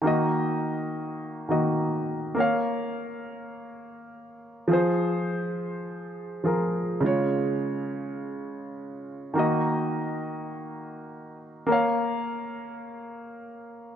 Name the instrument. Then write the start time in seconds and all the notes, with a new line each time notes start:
grand piano
0.02 D#3 A#3 F#4
0.07 D#5
1.49 D#3 A#3 F#4 D#5
2.35 A#3 A#4 C#5
2.40 F5
4.68 F3 F4 G#4
4.73 C5
6.44 F3 F4 G#4 A#4
7.01 C#3 G#3 F4
7.06 C#5
9.34 D#3 A#3 F#4
9.39 D#5
11.67 A#3 A#4 C#5
11.72 F5